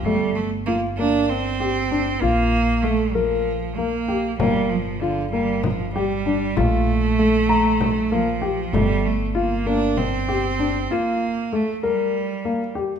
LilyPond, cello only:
\new Staff \with { instrumentName = "Cello" } { \time 7/8 \key g \minor \tempo 4 = 97 g8 a8 bes8 d'8 c'4. | bes4 a8 f4 bes4 | g8 f8 d8 g8 f8 g4 | a2~ a8 f4 |
g8 a8 bes8 d'8 c'4. | bes4 a8 g4. r8 | }